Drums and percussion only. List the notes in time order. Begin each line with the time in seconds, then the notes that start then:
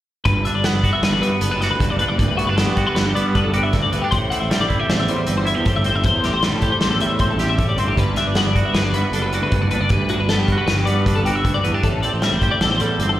0.25 kick, closed hi-hat
0.45 closed hi-hat
0.64 snare, closed hi-hat
0.84 kick, closed hi-hat
1.03 snare, closed hi-hat
1.23 closed hi-hat
1.41 closed hi-hat
1.62 snare, closed hi-hat
1.80 kick, closed hi-hat
1.99 closed hi-hat
2.19 kick, closed hi-hat
2.39 closed hi-hat
2.58 snare, closed hi-hat
2.77 kick, closed hi-hat
2.96 snare, closed hi-hat
3.16 closed hi-hat
3.35 kick, closed hi-hat
3.54 closed hi-hat
3.73 kick, snare, closed hi-hat
3.93 closed hi-hat
4.12 kick, closed hi-hat
4.32 closed hi-hat
4.51 snare, closed hi-hat
4.70 kick, closed hi-hat
4.90 snare, closed hi-hat
5.08 closed hi-hat
5.27 closed hi-hat
5.47 closed hi-hat
5.66 kick, closed hi-hat
5.84 closed hi-hat
6.04 kick, closed hi-hat
6.24 snare, closed hi-hat
6.43 snare, closed hi-hat
6.62 kick, closed hi-hat
6.81 snare, closed hi-hat
7.00 closed hi-hat
7.19 kick, closed hi-hat
7.39 snare, closed hi-hat
7.58 kick, closed hi-hat
7.78 closed hi-hat
7.97 kick, closed hi-hat
8.16 snare, closed hi-hat
8.35 snare, closed hi-hat
8.56 kick, closed hi-hat
8.74 snare, closed hi-hat
8.94 closed hi-hat
9.13 closed hi-hat
9.33 closed hi-hat
9.52 kick, closed hi-hat
9.71 closed hi-hat
9.89 kick, closed hi-hat
10.09 closed hi-hat
10.29 snare, closed hi-hat
10.48 kick, closed hi-hat
10.68 snare, closed hi-hat
10.87 closed hi-hat
11.06 kick, closed hi-hat
11.26 closed hi-hat
11.45 kick, closed hi-hat
11.65 closed hi-hat
11.83 kick, closed hi-hat
12.03 closed hi-hat
12.22 snare, closed hi-hat
12.42 kick, closed hi-hat
12.61 snare, closed hi-hat
12.80 closed hi-hat
13.00 closed hi-hat